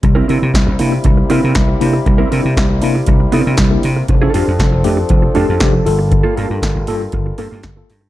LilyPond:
<<
  \new Staff \with { instrumentName = "Clean electric guitar" } { \time 4/4 \key c \mixolydian \tempo 4 = 118 r16 <c' e' bes'>16 <c' e' bes'>16 r4. r16 <c' e' bes'>16 <c' e' bes'>16 r4 | r16 <c' e' bes'>16 <c' e' bes'>16 r4. r16 <c' e' bes'>16 <c' e' bes'>16 r4 | r16 <d' f' a'>16 <d' f' a'>16 r4. r16 <d' f' a'>16 <d' f' a'>16 r4 | r16 <bes f' a'>16 <bes f' a'>16 r4. r16 <bes f' a'>16 <bes f' a'>16 r4 | }
  \new Staff \with { instrumentName = "Tine electric piano" } { \time 4/4 \key c \mixolydian <c g>16 r16 <d' e'>16 r8. <bes d' e'>16 r16 <c g>16 r16 <bes d' e'>16 <d' e'>16 r8 <bes d' e'>16 r16 | <c g>16 r16 <d' e'>16 r8. <bes d' e'>16 r16 <c g>16 r16 <bes d' e'>16 <d' e'>16 <c g>16 <bes d' e'>16 <d' e'>16 r16 | f16 r16 <d' g'>16 r8. <a d' g'>16 r16 f16 r16 <a d' g'>16 <d' g'>16 <d' g'>16 f16 <f' a'>16 r16 | <g, d>16 r16 <f' a'>16 r8. <bes f' a'>16 r16 <g, d>16 r16 <bes f' a'>16 r16 <g, d>16 <bes f' a'>16 <f' a'>16 r16 | }
  \new Staff \with { instrumentName = "French horn section" } { \time 4/4 \key c \mixolydian <c g bes e'>1~ | <c g bes e'>1 | <f c' d' a'>2.~ <f c' d' a'>8 <g f' bes'>8~ | <g f' bes'>1 | }
  \new Staff \with { instrumentName = "Slap bass" } { \clef bass \time 4/4 \key c \mixolydian c,8 c16 c16 c,16 c,16 c8 c,8 c16 c16 c,8 c8 | c,8 c16 c16 c,16 c,16 c8 c,8 c16 c16 c,8 c8 | f,,8 f,16 f,16 f,,16 f,,16 f,8 f,,8 f,16 f,16 f,,8 g,,8~ | g,,8 g,16 g,16 g,,16 g,,16 g,8 g,,8 g,16 g,16 g,,8 g,8 | }
  \new DrumStaff \with { instrumentName = "Drums" } \drummode { \time 4/4 <hh bd>8 hho8 <hh bd sn>8 hho8 <hh bd>8 hho8 <hh bd sn>8 hho8 | <hh bd>8 hho8 <hh bd sn>8 hho8 <hh bd>8 hho8 <hh bd sn>8 hho8 | <hh bd>8 hho8 <hh bd sn>8 hho8 <hh bd>8 hho8 <hh bd sn>8 hho8 | <hh bd>8 hho8 <hh bd sn>8 hho8 <hh bd>8 hho8 <hh bd sn>8 <hho sn>8 | }
>>